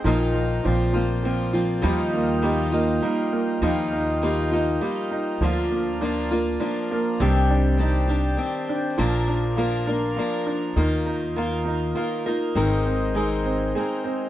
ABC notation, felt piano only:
X:1
M:3/4
L:1/8
Q:1/4=101
K:Eb
V:1 name="Felt piano"
[F,E] F, F, F, C F, | [F,G] B, G B, E B, | F, E G E G E | F, B, D B, D B, |
G, D E D2 D | F, D F D F D | E, E F E F E | E, C A C A C |]